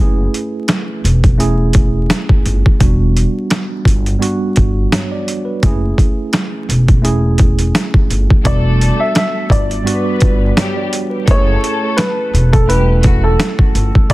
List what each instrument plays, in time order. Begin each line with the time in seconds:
Already playing: tine electric piano B4
0.00 upright bass F#1, tine electric piano A3 C#4 E4 G#4
0.34 closed hi-hat
0.68 snare, closed hi-hat
1.04 upright bass E1, closed hi-hat
1.24 kick, closed hi-hat
1.38 tine electric piano A3 C#4 E4 G#4, closed hi-hat
1.73 kick, closed hi-hat
2.10 snare, closed hi-hat
2.29 kick
2.45 upright bass G1, closed hi-hat
2.66 kick
2.80 upright bass E1, tine electric piano G3 B3 D4 F#4, kick, closed hi-hat
3.17 closed hi-hat
3.50 snare, closed hi-hat
3.85 upright bass G1, kick, closed hi-hat
4.06 closed hi-hat
4.19 tine electric piano G3 B3 D4 F#4, closed hi-hat
4.56 upright bass G1, kick, closed hi-hat
4.92 tine electric piano C#5, snare, closed hi-hat
5.12 tine electric piano D5
5.28 closed hi-hat
5.45 tine electric piano B4
5.63 upright bass F#1, tine electric piano A3 C#4 E4 G#4, kick, closed hi-hat
5.98 kick, closed hi-hat
6.33 snare, closed hi-hat
6.69 upright bass E1, closed hi-hat
6.88 kick, closed hi-hat
7.02 tine electric piano A3 C#4 E4 G#4, closed hi-hat
7.38 kick, closed hi-hat
7.59 closed hi-hat
7.75 snare, closed hi-hat
7.94 kick
8.10 upright bass G1, closed hi-hat
8.30 kick
8.44 upright bass E1, tine electric piano G3 B3 D4 F#4, string section A3 A4, upright piano D5, kick, closed hi-hat
8.81 closed hi-hat
9.00 upright piano E5
9.15 upright piano E5, snare, closed hi-hat
9.50 upright bass G1, upright piano D5, kick, closed hi-hat
9.71 closed hi-hat
9.84 tine electric piano G3 B3 D4 F#4, string section B3 B4, closed hi-hat
10.21 upright bass G1, kick, closed hi-hat
10.57 string section G3 G4, tine electric piano C#5, snare, closed hi-hat
10.77 tine electric piano D5
10.93 closed hi-hat
11.10 tine electric piano B4
11.27 upright bass F#1, string section A3 A4, tine electric piano A3 C#4 E4, kick, closed hi-hat
11.31 tine electric piano G#4, upright piano C#5
11.64 closed hi-hat
11.97 upright piano B4, snare, closed hi-hat
12.34 upright bass E1, closed hi-hat
12.53 upright piano A4, kick, closed hi-hat
12.67 string section G3 G4, tine electric piano A3 C#4 E4 A4, upright piano B4, closed hi-hat
13.03 string section F#3 F#4, kick, closed hi-hat
13.24 upright piano A4
13.40 snare, closed hi-hat
13.59 kick
13.75 upright bass G1, closed hi-hat
13.95 kick
14.09 upright bass E1, tine electric piano G3 B3 D4, kick, closed hi-hat